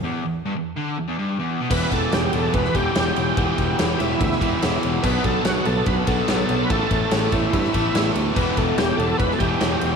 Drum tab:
CC |----------------|x---------------|----------------|x---------------|
RD |----------------|--x-x-x-x-x-x-x-|x-x-x-x-x-x-x-x-|--x-x-x-x-x-x-x-|
SD |----------------|----o----o--o---|----o----o--o---|----o-------o---|
BD |----------------|o-o-----o-o-----|o-o-----o-o-----|o-o-----o-o-----|

CC |----------------|x---------------|
RD |x-x-x-x-x-x-x-x-|--x-x-x-x-x-x-x-|
SD |----o----o--o---|----o----o--o---|
BD |o-o---o-o-o-----|o-o-----o-o-----|